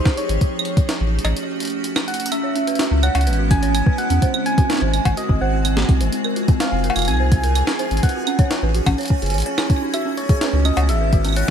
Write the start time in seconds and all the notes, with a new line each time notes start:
Already playing: F3 C4 D#4 G4 G#4 C5
0.05 kick, snare
0.17 C#5, closed hi-hat
0.29 G#1, closed hi-hat
0.41 A3 C#4 F#4, kick, closed hi-hat
0.59 claves
0.65 closed hi-hat
0.77 kick, closed hi-hat
0.89 snare, closed hi-hat
1.01 A1
1.19 closed hi-hat
1.25 A1, closed hi-hat, cowbell, claves
1.37 closed hi-hat
1.60 closed hi-hat
1.63 closed hi-hat
1.65 closed hi-hat
1.67 closed hi-hat
1.70 closed hi-hat
1.84 closed hi-hat
1.96 snare, claves
2.08 F#5, closed hi-hat
2.14 closed hi-hat
2.20 closed hi-hat
2.26 closed hi-hat
2.32 C#3 G#3 B3 C#4 E4 E5 G#5, closed hi-hat, claves
2.44 C#5
2.56 C#4, closed hi-hat
2.67 B4, closed hi-hat
2.75 snare, closed hi-hat
2.79 F#4, closed hi-hat
2.83 closed hi-hat
2.91 C#2 C#4
3.03 C#5 F#5, closed hi-hat, claves
3.15 C#2 C#4, closed hi-hat, cowbell
3.21 closed hi-hat
3.27 G#1 B4, closed hi-hat
3.33 closed hi-hat
3.39 F#4
3.51 C#4 G#5, kick, closed hi-hat
3.63 C#5, closed hi-hat
3.74 C#4 G#5, closed hi-hat, claves
3.86 B4, kick
3.98 F#4 F#5, closed hi-hat
4.10 E2 C#4, closed hi-hat
4.22 C4 F#4 C5, kick, closed hi-hat
4.34 C4, claves
4.46 C4 G#5, closed hi-hat
4.58 F#4, kick, closed hi-hat
4.70 C4, snare, closed hi-hat
4.73 snare
4.76 snare
4.79 G#1 C5, snare
4.93 C4, closed hi-hat, claves
5.05 G#1 C4, kick, closed hi-hat, cowbell
5.17 F#4 D#5, closed hi-hat
5.29 G#1 C4, kick
5.41 G#1 C5 F#5
5.53 C4
5.65 C4, closed hi-hat, claves
5.77 F#4, snare
5.89 C2 C4, kick, closed hi-hat
6.01 F#1 C5, closed hi-hat
6.12 F3 C4 D#4 F4 G#4, closed hi-hat
6.24 A#4, claves
6.36 F4, closed hi-hat
6.48 C4, kick, closed hi-hat
6.60 C5 F5, snare, closed hi-hat
6.72 F1 C4
6.84 A#4, closed hi-hat
6.90 cowbell
6.96 F1 F4, closed hi-hat, claves
6.99 closed hi-hat, claves
7.02 closed hi-hat, claves
7.05 C2 G#5, closed hi-hat, claves
7.08 C4, closed hi-hat, claves
7.11 claves
7.14 claves
7.20 C5
7.32 C4, kick, closed hi-hat
7.44 A#4, closed hi-hat
7.55 F4, closed hi-hat, claves
7.67 C4, snare
7.79 C5, closed hi-hat
7.91 G#1 C4, closed hi-hat
7.97 closed hi-hat
8.03 A3 C#4 F#4 B4 F#5, kick, closed hi-hat
8.09 closed hi-hat
8.15 F#4
8.27 C#4, closed hi-hat, claves
8.39 C#5, kick, closed hi-hat
8.51 C#4, snare, closed hi-hat
8.63 A1 B4
8.74 F#4, closed hi-hat
8.86 A1 C#4, kick, closed hi-hat, cowbell, claves
8.98 C#5, closed hi-hat
9.01 closed hi-hat
9.03 closed hi-hat
9.06 closed hi-hat
9.08 C#4, kick, closed hi-hat
9.22 F#1 G#4, closed hi-hat
9.26 closed hi-hat
9.30 closed hi-hat
9.34 A1 C#5, closed hi-hat
9.38 closed hi-hat
9.40 closed hi-hat
9.42 closed hi-hat
9.46 C#5, closed hi-hat
9.58 E4, snare, claves
9.70 C#4, kick, closed hi-hat
9.82 D#4
9.94 C#3 G#3 B3 C#4 E4 F#4 E5, closed hi-hat, claves
10.06 C#4
10.17 C#5, closed hi-hat
10.29 G#4, kick, closed hi-hat
10.41 B4, snare, closed hi-hat
10.53 C#2 F#4
10.65 C#4 D#5, closed hi-hat, claves
10.77 C#2 C#5, closed hi-hat, cowbell
10.89 G#1 G#4 E5, closed hi-hat
11.01 B4
11.13 F#4, kick, closed hi-hat
11.25 C#4, closed hi-hat, claves
11.29 claves
11.32 C#5, closed hi-hat, claves
11.37 F#5